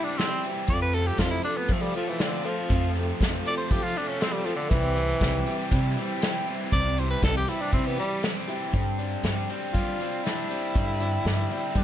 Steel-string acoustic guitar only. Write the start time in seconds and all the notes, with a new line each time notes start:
Already playing: C4 E4 G4
0.19 G3 C4 E4 G4
0.45 C4 E4 G4
0.69 F3 C4 F4 A4
0.95 C4 F4 A4
1.19 F3 C4 F4 A4
1.44 C4 F4 A4
1.69 F3 C4 F4 A4
1.95 C4 F4 A4
2.20 F3 C4 F4 A4
2.45 C4 F4 A4
2.71 F3 C4 F4 A4
2.97 C4 F4 A4
3.21 F3 C4 F4 A4
3.46 C4 F4 A4
3.70 F3 C4 F4 A4
3.96 C4 F4 A4
4.20 F3 C4 F4 A4
4.46 C4 F4 A4
4.70 C3 G3 C4 E4 G4
4.95 C4 E4 G4
5.21 G3 C4 E4 G4
5.47 C4 E4 G4
5.71 C3 G3 C4 E4 G4
5.97 C4 E4 G4
6.22 G3 C4 E4 G4
6.47 C4 E4 G4
6.73 C3 G3 C4 E4 G4
6.98 C4 E4 G4
7.23 G3 C4 E4 G4
7.47 C4 E4 G4
7.73 C3 G3 C4 E4 G4
7.98 C4 E4 G4
8.23 G3 C4 E4 G4
8.48 C4 E4 G4
8.73 G2 D3 G3 C4 D4 G4
8.98 G3 C4 D4 G4
9.23 G3 C4 D4 G4
9.50 G3 C4 D4 G4
9.75 G2 D3 G3 C4 D4 G4
10.00 G3 C4 D4 G4
10.23 G3 C4 D4 G4
10.48 G3 C4 D4 G4
10.75 G2 D3 G3 C4 D4 G4
11.01 G3 C4 D4 G4
11.25 G3 C4 D4 G4
11.50 G3 C4 D4 G4
11.74 G2 D3 G3 C4 D4 G4